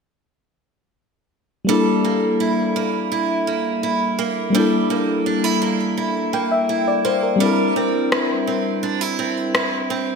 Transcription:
1.65 4.48 G3 medium
1.65 4.50 A#3 medium
1.69 4.54 G3 medium
1.69 4.51 D4 medium
1.69 4.52 E4 medium
1.69 4.54 A4 medium
1.74 4.53 A4 medium
2.04 2.76 A#3 medium
2.40 3.11 E4 medium
2.76 3.47 A#3 medium
3.12 3.83 E4 medium
3.47 4.18 A#3 medium
3.83 5.26 E4 medium
4.19 4.90 A#3 medium
4.50 7.34 G3 medium
4.50 7.35 A#3 medium
4.55 7.40 G3 medium
4.55 7.36 D4 medium
4.55 7.38 E4 medium
4.55 7.40 A4 medium
4.60 6.32 A4 medium
4.90 5.61 A#3 medium
5.26 5.44 D4 medium
5.44 5.96 E4 soft
5.62 6.33 A#3 medium
5.97 6.69 E4 medium
6.33 7.04 A#3 medium
6.33 6.50 G5 medium
6.52 6.85 E5 medium
6.69 8.12 E4 medium
6.88 7.04 D5 medium
7.05 7.76 A#3 medium
7.05 7.22 C5 medium
7.23 7.51 A#4 medium
7.36 10.15 G3 medium
7.36 10.15 C4 medium
7.40 10.15 G3 medium
7.40 10.15 D4 medium
7.40 10.15 E4 medium
7.40 10.15 A#4 medium
7.46 7.49 A4 medium
7.52 10.15 A#4 medium
7.76 8.47 C4 medium
8.12 8.82 E4 medium
8.12 cross-stick loud
8.47 9.19 C4 medium
8.83 9.01 D4 medium
9.01 9.54 E4 medium
9.19 9.90 C4 medium
9.55 10.15 E4 medium
9.55 cross-stick loud
9.90 10.15 C4 medium

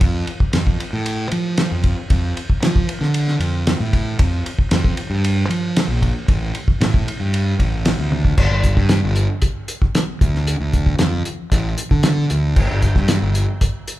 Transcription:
0.01 0.24 F2 loud
0.01 kick loud
0.01 ride medium
0.27 ride medium
0.40 kick medium
0.53 0.76 F2 medium
0.53 snare loud
0.53 ride medium
0.67 kick medium
0.80 ride medium
0.93 1.26 A2 medium
1.06 ride medium
1.31 1.66 F3 medium
1.31 ride medium
1.57 snare loud
1.57 ride medium
1.71 1.94 F2 medium
1.84 kick medium
1.84 ride medium
2.10 2.33 F2 medium
2.10 kick loud
2.10 ride medium
2.37 ride medium
2.50 kick medium
2.62 2.85 F3 loud
2.62 snare loud
2.62 ride medium
2.76 kick medium
2.89 ride medium
3.01 3.35 D3 medium
3.01 snare soft
3.14 ride medium
3.28 snare soft
3.39 3.74 F2 medium
3.39 ride medium
3.67 snare loud
3.67 ride medium
3.80 4.14 A2 medium
3.93 kick medium
3.93 ride medium
4.19 4.42 F2 loud
4.19 kick loud
4.19 ride medium
4.46 ride medium
4.59 kick medium
4.71 4.94 F2 medium
4.71 snare loud
4.71 ride medium
4.84 kick medium
4.97 ride medium
5.10 5.44 G2 medium
5.24 ride medium
5.49 5.83 F3 medium
5.49 ride medium
5.76 snare loud
5.76 ride medium
5.88 6.11 A#1 medium
6.02 kick medium
6.02 ride medium
6.28 6.51 A1 medium
6.28 kick loud
6.28 ride medium
6.55 ride medium
6.68 kick medium
6.80 7.03 A2 loud
6.80 snare loud
6.80 ride medium
6.94 kick loud
7.08 ride medium
7.20 7.54 G2 medium
7.34 ride medium
7.60 7.93 A1 medium
7.60 kick medium
7.60 ride medium
7.85 snare loud
7.85 ride medium
7.99 8.32 D2 medium
8.12 high tom medium
8.25 kick medium
8.38 8.49 G1 medium
8.38 kick loud
8.38 crash loud
8.51 8.73 G1 medium
8.64 kick medium
8.64 closed hi-hat medium
8.77 8.99 G2 medium
8.77 kick medium
8.89 snare loud
8.89 closed hi-hat medium
9.04 9.26 G1 medium
9.16 closed hi-hat medium
9.42 kick medium
9.42 closed hi-hat medium
9.68 closed hi-hat medium
9.82 kick medium
9.95 snare loud
9.95 closed hi-hat medium
10.21 10.55 D2 medium
10.21 kick loud
10.21 closed hi-hat medium
10.35 snare soft
10.47 closed hi-hat medium
10.60 10.94 D2 medium
10.73 kick medium
10.73 closed hi-hat medium
10.86 kick medium
10.99 11.22 F2 loud
10.99 snare loud
10.99 closed hi-hat loud
11.25 closed hi-hat medium
11.52 11.74 A1 loud
11.52 kick medium
11.52 closed hi-hat medium
11.78 closed hi-hat medium
11.91 12.25 D3 loud
11.91 kick medium
12.03 snare loud
12.03 closed hi-hat loud
12.30 12.53 D2 medium
12.30 closed hi-hat medium
12.56 12.68 G1 loud
12.56 kick loud
12.56 crash medium
12.71 12.93 G1 medium
12.82 kick medium
12.82 closed hi-hat medium
12.96 13.18 G2 medium
12.96 kick medium
12.96 snare soft
13.08 snare loud
13.08 closed hi-hat loud
13.22 13.45 G1 medium
13.35 closed hi-hat medium
13.61 kick medium
13.61 closed hi-hat medium
13.88 closed hi-hat medium

